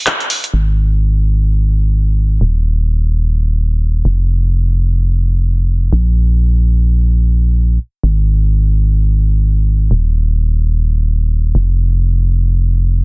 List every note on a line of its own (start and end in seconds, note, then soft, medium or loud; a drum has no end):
0.07 clap loud
0.07 closed hi-hat medium
0.20 closed hi-hat soft
0.30 open hi-hat loud
0.44 closed hi-hat medium
0.54 2.39 G#1 medium
2.41 4.03 D#1 medium
4.05 5.91 F1 medium
5.93 7.78 A#1 medium
8.03 9.89 G#1 medium
9.91 11.53 D#1 medium
11.55 13.04 F1 medium